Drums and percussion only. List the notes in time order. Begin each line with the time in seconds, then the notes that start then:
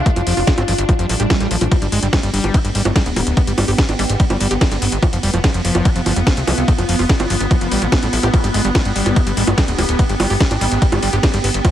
0.06 kick, closed hi-hat
0.16 closed hi-hat, high bongo
0.27 open hi-hat
0.37 open hi-hat
0.47 kick, snare, closed hi-hat
0.58 closed hi-hat, high bongo
0.68 open hi-hat
0.78 closed hi-hat
0.89 kick, closed hi-hat, high bongo
0.99 closed hi-hat
1.09 open hi-hat
1.20 closed hi-hat
1.30 kick, snare, closed hi-hat, high bongo
1.40 snare, closed hi-hat
1.51 open hi-hat
1.61 closed hi-hat, high bongo
1.72 kick, closed hi-hat, ride, high bongo
1.82 closed hi-hat
1.92 open hi-hat
2.03 closed hi-hat
2.13 kick, snare, closed hi-hat, ride, high bongo
2.23 closed hi-hat
2.34 open hi-hat
2.44 closed hi-hat, high bongo
2.54 kick, closed hi-hat, ride
2.65 closed hi-hat
2.75 open hi-hat
2.85 closed hi-hat, high bongo
2.96 kick, snare, closed hi-hat, ride
3.06 closed hi-hat
3.16 open hi-hat, high bongo
3.27 closed hi-hat
3.37 kick, closed hi-hat, ride
3.47 closed hi-hat
3.58 open hi-hat, high bongo
3.68 open hi-hat
3.78 kick, snare, ride
3.89 closed hi-hat, high bongo
3.99 open hi-hat
4.09 closed hi-hat
4.20 kick, closed hi-hat, ride
4.30 closed hi-hat, high bongo
4.41 open hi-hat
4.51 closed hi-hat
4.61 kick, snare, closed hi-hat, ride, high bongo
4.72 snare, closed hi-hat
4.82 open hi-hat
4.92 closed hi-hat
5.03 kick, closed hi-hat, ride, high bongo
5.13 closed hi-hat
5.23 open hi-hat
5.34 closed hi-hat, high bongo
5.44 kick, snare, closed hi-hat, ride
5.54 closed hi-hat
5.65 open hi-hat
5.75 closed hi-hat, high bongo
5.85 kick, closed hi-hat, ride
5.96 closed hi-hat
6.06 open hi-hat, high bongo
6.16 closed hi-hat
6.27 kick, snare, closed hi-hat, ride
6.37 closed hi-hat
6.47 open hi-hat, high bongo
6.58 closed hi-hat
6.68 kick, closed hi-hat, ride
6.78 closed hi-hat, high bongo
6.89 open hi-hat
6.99 open hi-hat
7.09 kick, snare, closed hi-hat, ride
7.20 closed hi-hat, high bongo
7.30 open hi-hat
7.40 closed hi-hat
7.51 kick, closed hi-hat, ride, high bongo
7.61 closed hi-hat
7.72 open hi-hat
7.82 closed hi-hat
7.92 kick, snare, closed hi-hat, ride, high bongo
8.03 snare, closed hi-hat
8.13 open hi-hat
8.23 closed hi-hat, high bongo
8.34 kick, closed hi-hat, ride, high bongo
8.44 closed hi-hat
8.54 open hi-hat
8.65 closed hi-hat
8.75 kick, snare, closed hi-hat, ride, high bongo
8.85 closed hi-hat
8.96 open hi-hat
9.06 closed hi-hat, high bongo
9.16 kick, closed hi-hat, ride
9.27 closed hi-hat
9.37 open hi-hat
9.47 closed hi-hat, high bongo
9.58 kick, snare, closed hi-hat, ride
9.68 closed hi-hat
9.78 open hi-hat, high bongo
9.89 closed hi-hat
9.99 kick, closed hi-hat, ride
10.09 closed hi-hat
10.20 open hi-hat, high bongo
10.30 open hi-hat
10.40 kick, snare, closed hi-hat, ride
10.51 closed hi-hat, high bongo
10.61 open hi-hat
10.72 closed hi-hat
10.82 kick, closed hi-hat, ride
10.92 closed hi-hat, high bongo
11.03 open hi-hat
11.13 closed hi-hat
11.23 kick, snare, closed hi-hat, ride, high bongo
11.34 snare, closed hi-hat
11.44 open hi-hat
11.54 closed hi-hat
11.65 kick, closed hi-hat, ride, high bongo